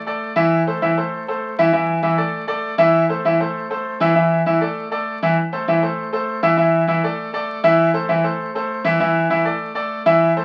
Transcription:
0.06 0.30 A3 medium
0.06 0.31 A4 medium
0.06 0.31 D5 medium
0.36 0.60 E3 loud
0.36 0.61 E4 loud
0.36 0.61 E5 medium
0.67 0.79 A3 medium
0.67 0.79 A4 medium
0.67 0.79 C5 medium
0.82 0.94 E3 medium
0.82 0.94 E4 medium
0.82 0.94 E5 medium
0.97 1.22 A3 medium
0.97 1.22 A4 medium
0.97 1.22 C5 medium
1.28 1.52 A3 medium
1.28 1.52 A4 medium
1.28 1.53 C5 medium
1.59 1.70 E3 loud
1.59 1.70 E4 loud
1.59 1.71 E5 loud
1.72 1.97 E3 medium
1.72 1.97 E4 medium
1.72 1.98 E5 medium
2.03 2.15 E3 medium
2.03 2.15 E4 medium
2.03 2.15 E5 medium
2.17 2.42 A3 medium
2.17 2.43 A4 medium
2.17 2.43 D5 medium
2.47 2.72 A3 medium
2.47 2.73 A4 medium
2.47 2.73 D5 medium
2.78 3.03 E3 loud
2.78 3.03 E4 loud
2.78 3.04 E5 loud
3.09 3.21 A3 medium
3.09 3.21 A4 medium
3.09 3.22 C5 medium
3.25 3.37 E3 medium
3.25 3.37 E4 medium
3.25 3.37 E5 medium
3.40 3.65 A3 medium
3.40 3.65 A4 medium
3.40 3.65 C5 medium
3.70 3.95 A3 medium
3.70 3.95 A4 medium
3.70 3.95 C5 medium
4.00 4.13 E3 loud
4.00 4.13 E4 loud
4.00 4.13 E5 loud
4.15 4.40 E3 medium
4.15 4.40 E4 medium
4.15 4.40 E5 medium
4.46 4.58 E3 medium
4.46 4.58 E4 medium
4.46 4.59 E5 medium
4.61 4.86 A3 medium
4.61 4.86 A4 medium
4.61 4.86 D5 medium
4.91 5.16 A3 medium
4.91 5.16 A4 medium
4.91 5.16 D5 medium
5.22 5.34 E3 loud
5.22 5.35 E4 loud
5.22 5.35 E5 medium
5.52 5.64 A3 medium
5.52 5.65 A4 medium
5.52 5.65 C5 medium
5.68 5.80 E3 medium
5.68 5.80 E4 medium
5.68 5.80 E5 medium
5.82 6.07 A3 medium
5.82 6.07 A4 medium
5.82 6.07 C5 medium
6.12 6.37 A3 medium
6.12 6.37 A4 medium
6.12 6.38 C5 medium
6.43 6.55 E3 loud
6.43 6.55 E4 loud
6.43 6.55 E5 loud
6.57 6.82 E3 medium
6.57 6.82 E4 medium
6.57 6.82 E5 medium
6.87 7.00 E3 medium
6.87 7.01 E4 medium
6.87 7.01 E5 medium
7.03 7.28 A3 medium
7.03 7.28 A4 medium
7.03 7.29 D5 medium
7.33 7.58 A3 medium
7.33 7.58 A4 medium
7.33 7.59 D5 medium
7.64 7.89 E3 loud
7.64 7.89 E4 loud
7.64 7.89 E5 loud
7.93 8.06 A3 medium
7.93 8.06 A4 medium
7.93 8.06 C5 medium
8.09 8.21 E3 medium
8.09 8.21 E4 medium
8.09 8.21 E5 medium
8.23 8.49 A3 medium
8.23 8.49 A4 medium
8.23 8.49 C5 medium
8.55 8.80 A3 medium
8.55 8.80 A4 medium
8.55 8.80 C5 medium
8.84 8.97 E3 loud
8.84 8.97 E4 loud
8.84 8.97 E5 loud
9.00 9.25 E3 medium
9.00 9.25 E4 medium
9.00 9.25 E5 medium
9.30 9.42 E3 medium
9.30 9.43 E4 medium
9.30 9.43 E5 medium
9.45 9.70 A3 medium
9.45 9.70 A4 medium
9.45 9.70 D5 medium
9.75 10.00 A3 medium
9.75 10.00 A4 medium
9.75 10.00 D5 medium
10.06 10.31 E3 loud
10.06 10.31 E4 loud
10.06 10.31 E5 loud
10.37 10.45 A3 medium
10.37 10.45 A4 medium
10.37 10.45 C5 medium

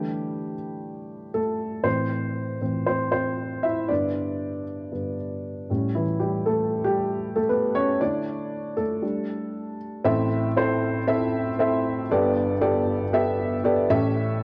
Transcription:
0.00 0.53 D3 soft
0.00 0.53 E3 soft
0.00 1.31 G3 medium
0.00 0.53 A3 soft
0.00 1.39 G4 medium
1.34 1.82 A3 medium
1.34 1.87 A4 medium
1.83 2.57 A2 soft
1.83 2.57 E3 soft
1.83 2.60 C4 medium
1.83 2.85 C5 medium
2.61 2.84 A2 soft
2.61 2.85 E3 soft
2.61 2.85 C4 soft
2.86 3.12 C4 medium
2.86 3.10 C5 medium
3.12 3.61 C4 medium
3.12 3.65 C5 medium
3.63 3.88 E4 medium
3.63 3.90 E5 medium
3.88 4.90 G2 soft
3.88 4.90 D3 soft
3.88 4.91 B3 soft
3.88 4.63 D4 medium
3.88 4.62 D5 medium
4.92 5.15 G2 soft
4.92 5.15 D3 soft
4.92 5.15 B3 soft
5.70 6.04 A2 medium
5.70 6.04 G3 soft
5.70 6.04 C#4 medium
5.95 6.02 E3 medium
5.95 6.01 E4 medium
6.20 6.45 G3 medium
6.20 6.46 G4 medium
6.46 6.82 A3 medium
6.46 6.82 A4 medium
6.84 7.33 G3 medium
6.84 7.37 G4 medium
7.36 7.48 A3 medium
7.36 7.48 A4 medium
7.49 7.73 B3 medium
7.49 7.75 B4 medium
7.75 7.99 C#4 medium
7.75 8.01 C#5 medium
8.00 8.73 D3 soft
8.00 8.74 A3 soft
8.00 8.74 D4 medium
8.00 8.74 E4 medium
8.00 8.80 D5 medium
8.77 9.01 A3 medium
8.77 9.75 A4 medium
9.02 10.01 G3 soft
9.02 10.01 A3 soft
9.02 10.01 D4 medium
10.04 12.06 A1 medium
10.04 12.06 A2 medium
10.04 10.46 C4 medium
10.04 10.46 E4 medium
10.04 10.47 A4 medium
10.04 10.47 E5 loud
10.57 10.98 C4 medium
10.57 10.98 E4 medium
10.57 10.98 A4 medium
10.57 10.98 C5 medium
11.07 11.49 C4 medium
11.07 11.49 E4 medium
11.07 11.49 A4 medium
11.07 11.49 E5 loud
11.59 12.01 C4 medium
11.59 12.01 E4 medium
11.59 12.01 A4 medium
11.59 12.01 E5 medium
12.11 13.86 G1 medium
12.11 13.86 G2 medium
12.11 12.52 B3 medium
12.11 12.52 G4 medium
12.11 12.52 A4 medium
12.11 12.52 D5 loud
12.61 13.03 B3 medium
12.61 13.03 G4 medium
12.61 13.03 A4 medium
12.61 13.03 D5 loud
13.13 13.55 B3 medium
13.13 13.54 G4 medium
13.13 13.54 A4 medium
13.13 13.55 E5 loud
13.64 13.90 B3 medium
13.64 13.89 G4 medium
13.64 13.89 A4 medium
13.64 13.90 D5 loud
13.90 14.43 A1 medium
13.90 14.43 A2 medium
13.90 14.43 C#4 loud
13.90 14.43 G4 medium
13.90 14.43 A4 medium
13.90 14.43 E5 loud

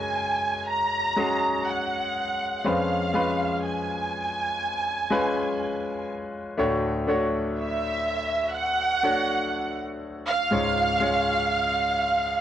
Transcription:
0.00 2.61 F#2 medium
0.00 2.61 C#3 medium
0.00 1.16 G#3 medium
0.00 1.17 C#4 medium
0.00 1.17 F#4 medium
0.00 2.66 A#4 medium
0.00 0.65 G#5 medium
0.69 1.67 A#5 medium
1.16 2.57 G#3 medium
1.16 2.57 C#4 medium
1.16 2.58 F#4 medium
1.16 2.58 G#4 medium
1.67 2.65 F#5 medium
2.64 6.54 F2 soft
2.64 6.54 F3 soft
2.64 3.11 G#3 medium
2.64 3.11 C#4 soft
2.64 3.12 F4 soft
2.64 3.12 B4 medium
2.64 3.64 F5 medium
3.14 5.01 G#3 medium
3.14 5.01 C#4 soft
3.14 5.01 F4 medium
3.14 5.02 B4 medium
3.65 6.06 G#5 medium
5.10 6.51 G#3 medium
5.10 6.51 C#4 medium
5.10 6.51 F4 medium
5.10 6.52 B4 medium
6.58 10.48 D2 medium
6.58 10.48 A2 medium
6.58 7.05 A3 medium
6.58 7.05 D4 medium
6.58 7.05 F#4 medium
6.58 7.06 C#5 medium
7.07 8.94 A3 medium
7.07 8.94 D4 medium
7.07 8.95 F#4 medium
7.07 8.95 C#5 medium
7.58 8.52 E5 medium
8.56 9.78 F#5 loud
9.03 10.44 A3 medium
9.03 10.44 D4 medium
9.03 10.44 F#4 medium
9.03 10.45 C#5 medium
10.28 12.41 F5 loud
10.51 12.41 C#2 soft
10.51 12.41 G#2 medium
10.51 10.98 G#3 medium
10.51 10.98 C#4 medium
10.51 10.99 F4 medium
10.51 10.99 C#5 medium
11.00 12.41 G#3 medium
11.00 12.41 C#4 soft
11.00 12.41 F4 medium
11.00 12.41 C#5 medium

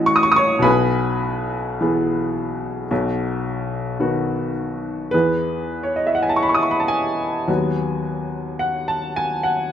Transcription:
0.00 0.61 A1 medium
0.00 0.61 A2 medium
0.00 0.60 E3 medium
0.00 0.61 C#4 soft
0.00 0.61 F#4 medium
0.00 0.66 D#5 medium
0.00 0.16 D#6 loud
0.06 0.14 C#6 medium
0.16 0.23 D#6 medium
0.23 0.31 C#6 medium
0.32 0.39 D#6 medium
0.36 0.62 C#5 medium
0.36 0.63 C#6 medium
0.59 2.85 B1 medium
0.59 2.84 B2 medium
0.59 4.54 B5 medium
0.64 4.50 B4 medium
0.64 4.50 G#5 medium
1.81 2.86 E3 soft
1.81 2.87 B3 soft
1.81 2.87 G#4 soft
2.91 5.09 B1 medium
2.91 5.09 B2 medium
4.00 5.09 D#3 soft
4.00 5.09 B3 soft
4.00 5.10 F#4 medium
5.11 7.45 E2 soft
5.11 7.44 E3 soft
5.11 7.45 B3 soft
5.11 7.44 G#4 soft
5.11 5.83 B4 medium
5.83 5.97 C#5 medium
5.96 6.07 D#5 medium
6.07 6.16 E5 medium
6.15 6.24 F#5 medium
6.23 6.30 G#5 medium
6.29 6.37 A5 medium
6.36 6.43 C#6 medium
6.43 6.50 B5 medium
6.49 6.57 C#6 medium
6.55 6.64 D#6 medium
6.63 6.72 C#6 medium
6.71 6.81 B5 medium
6.80 6.89 A5 medium
6.88 8.61 G#5 medium
7.48 9.70 D#2 soft
7.48 9.70 F#3 soft
7.48 9.70 B3 soft
7.48 9.70 F#4 soft
8.59 8.89 F#5 medium
8.88 9.17 A5 medium
9.16 9.45 G#5 medium
9.43 9.72 F#5 medium

